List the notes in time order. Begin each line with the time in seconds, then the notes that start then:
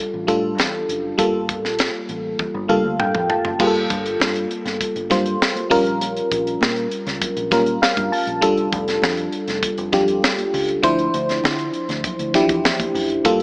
Already playing: G3 D4 F4 A4
0.14 A1
0.27 A2 G3 D4 F4 A4, kick, closed hi-hat
0.58 E2, snare, closed hi-hat
0.89 F#1, closed hi-hat
1.18 G1 G3 A#3 F4 A4, kick, closed hi-hat
1.49 kick, closed hi-hat
1.64 A#1, snare
1.79 snare, closed hi-hat
2.09 A1, closed hi-hat
2.39 kick, high tom
2.54 G1
2.68 G2 G3 A#3 F4 A4 F5, mid tom
2.84 D2
3.00 G2 G5, mid tom
3.15 F2, mid tom
3.30 A5, floor tom
3.45 F#1, floor tom
3.59 G1 G3 A#3 F4 G#4, kick, crash, muted conga
3.67 A4
3.75 closed hi-hat
3.90 G1, kick, closed hi-hat, muted conga
4.06 closed hi-hat
4.20 G2, snare, high conga
4.35 closed hi-hat
4.51 closed hi-hat
4.65 G1, snare, closed hi-hat
4.81 kick, closed hi-hat, muted conga
4.96 G1, closed hi-hat
5.10 G2 G3 A#3 F4 C5, kick, snare, closed hi-hat, muted conga, low conga
5.26 closed hi-hat
5.40 snare, high conga
5.56 closed hi-hat, high conga
5.70 A#1 G3 C#4 F4 A#4, kick, open hi-hat
5.86 closed hi-hat
6.01 closed hi-hat, muted conga
6.17 closed hi-hat
6.31 A#1, kick, closed hi-hat
6.47 closed hi-hat
6.61 A#2, snare, high conga
6.76 closed hi-hat
6.91 closed hi-hat
7.07 C#2, snare, closed hi-hat
7.22 kick, closed hi-hat, muted conga, low conga
7.37 A#1, closed hi-hat
7.51 A#2 G3 C#4 F4 A#4, kick, snare, closed hi-hat, muted conga, low conga
7.66 closed hi-hat
7.81 F5, snare, high conga
7.97 G2, kick, closed hi-hat, high conga
8.12 A5, open hi-hat
8.27 A#1, closed hi-hat
8.41 F1 G3 D4 F4 A4, kick, closed hi-hat, muted conga
8.57 closed hi-hat
8.72 F1, kick, closed hi-hat, muted conga
8.88 snare, closed hi-hat
9.02 F2, snare, high conga
9.17 closed hi-hat
9.32 closed hi-hat
9.48 F1, snare, closed hi-hat
9.63 kick, closed hi-hat, muted conga
9.78 F1, closed hi-hat
9.92 F2 G3 D4 F4 G4, kick, snare, closed hi-hat, muted conga, low conga
10.08 closed hi-hat
10.22 snare, high conga
10.38 closed hi-hat, high conga
10.54 C#2, open hi-hat
10.68 closed hi-hat
10.83 D2 F3 D4 E4 C5, kick, closed hi-hat, muted conga
10.99 closed hi-hat
11.14 D2, closed hi-hat
11.29 snare, closed hi-hat
11.44 D3, snare, high conga
11.59 closed hi-hat
11.74 closed hi-hat
11.89 D2, snare, closed hi-hat
12.04 kick, closed hi-hat, muted conga, low conga
12.19 D2, closed hi-hat
12.34 E3 D4 E4 G4, kick, snare, closed hi-hat, muted conga, low conga
12.41 F3
12.49 E2, kick, closed hi-hat
12.64 snare, high conga
12.79 kick, closed hi-hat, high conga
12.94 F#1, open hi-hat
13.10 closed hi-hat
13.25 G1 G3 A#3 F4 A4, kick, closed hi-hat, muted conga